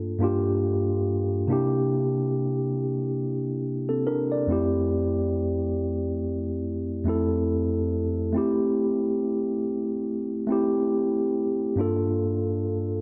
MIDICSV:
0, 0, Header, 1, 2, 480
1, 0, Start_track
1, 0, Key_signature, -1, "major"
1, 0, Tempo, 857143
1, 838, Time_signature, 4, 2, 24, 8
1, 7288, End_track
2, 0, Start_track
2, 0, Title_t, "Tine electric piano"
2, 0, Program_c, 0, 4
2, 0, Control_c, 0, 64, 127
2, 0, Note_on_c, 0, 43, 82
2, 0, Note_on_c, 0, 58, 75
2, 0, Note_on_c, 0, 62, 74
2, 0, Note_on_c, 0, 65, 75
2, 0, Note_on_c, 0, 69, 88
2, 106, Note_off_c, 0, 43, 0
2, 106, Note_on_c, 0, 43, 83
2, 113, Note_off_c, 0, 58, 0
2, 113, Note_on_c, 0, 58, 80
2, 120, Note_off_c, 0, 62, 0
2, 120, Note_on_c, 0, 62, 74
2, 127, Note_off_c, 0, 65, 0
2, 127, Note_on_c, 0, 65, 81
2, 134, Note_on_c, 0, 67, 97
2, 609, Note_off_c, 0, 43, 0
2, 613, Note_off_c, 0, 58, 0
2, 616, Note_off_c, 0, 62, 0
2, 619, Note_off_c, 0, 65, 0
2, 623, Note_off_c, 0, 67, 0
2, 827, Note_on_c, 0, 48, 85
2, 834, Note_on_c, 0, 58, 73
2, 841, Note_on_c, 0, 62, 78
2, 845, Control_c, 0, 64, 0
2, 847, Note_on_c, 0, 64, 73
2, 850, Note_off_c, 0, 69, 0
2, 854, Note_on_c, 0, 67, 94
2, 950, Control_c, 0, 64, 127
2, 1501, Note_off_c, 0, 48, 0
2, 1505, Note_off_c, 0, 58, 0
2, 1508, Note_off_c, 0, 62, 0
2, 1512, Note_off_c, 0, 64, 0
2, 1515, Note_off_c, 0, 67, 0
2, 2178, Note_on_c, 0, 69, 64
2, 2182, Note_on_c, 0, 60, 54
2, 2273, Note_off_c, 0, 69, 0
2, 2275, Note_off_c, 0, 60, 0
2, 2278, Note_on_c, 0, 70, 76
2, 2281, Note_on_c, 0, 62, 66
2, 2410, Note_off_c, 0, 70, 0
2, 2412, Note_off_c, 0, 62, 0
2, 2418, Note_on_c, 0, 74, 63
2, 2504, Note_on_c, 0, 41, 88
2, 2512, Note_on_c, 0, 57, 79
2, 2519, Note_on_c, 0, 60, 76
2, 2525, Control_c, 0, 64, 0
2, 2525, Note_on_c, 0, 64, 78
2, 2533, Note_on_c, 0, 67, 96
2, 2623, Control_c, 0, 64, 127
2, 2646, Note_off_c, 0, 74, 0
2, 3287, Note_off_c, 0, 41, 0
2, 3291, Note_off_c, 0, 57, 0
2, 3294, Note_off_c, 0, 60, 0
2, 3297, Note_off_c, 0, 64, 0
2, 3301, Note_off_c, 0, 67, 0
2, 3944, Note_on_c, 0, 41, 84
2, 3951, Note_on_c, 0, 57, 82
2, 3959, Note_on_c, 0, 60, 78
2, 3965, Note_on_c, 0, 64, 83
2, 3973, Note_on_c, 0, 69, 99
2, 4448, Note_off_c, 0, 41, 0
2, 4451, Note_off_c, 0, 57, 0
2, 4455, Note_off_c, 0, 60, 0
2, 4459, Note_off_c, 0, 64, 0
2, 4462, Note_off_c, 0, 69, 0
2, 4664, Note_on_c, 0, 57, 81
2, 4673, Note_on_c, 0, 60, 76
2, 4682, Note_on_c, 0, 64, 72
2, 4686, Control_c, 0, 64, 0
2, 4691, Note_on_c, 0, 67, 94
2, 4770, Control_c, 0, 64, 127
2, 5340, Note_off_c, 0, 57, 0
2, 5345, Note_off_c, 0, 60, 0
2, 5349, Note_off_c, 0, 64, 0
2, 5354, Note_off_c, 0, 67, 0
2, 5864, Note_on_c, 0, 57, 86
2, 5873, Note_on_c, 0, 60, 80
2, 5883, Note_on_c, 0, 64, 79
2, 5892, Note_on_c, 0, 67, 98
2, 6368, Note_off_c, 0, 57, 0
2, 6373, Note_off_c, 0, 60, 0
2, 6377, Note_off_c, 0, 64, 0
2, 6382, Note_off_c, 0, 67, 0
2, 6585, Note_on_c, 0, 43, 78
2, 6592, Note_on_c, 0, 58, 77
2, 6599, Note_on_c, 0, 62, 77
2, 6606, Control_c, 0, 64, 0
2, 6606, Note_on_c, 0, 65, 72
2, 6613, Note_on_c, 0, 69, 92
2, 6716, Control_c, 0, 64, 127
2, 7261, Note_off_c, 0, 43, 0
2, 7264, Note_off_c, 0, 58, 0
2, 7268, Note_off_c, 0, 62, 0
2, 7271, Note_off_c, 0, 65, 0
2, 7274, Note_off_c, 0, 69, 0
2, 7288, End_track
0, 0, End_of_file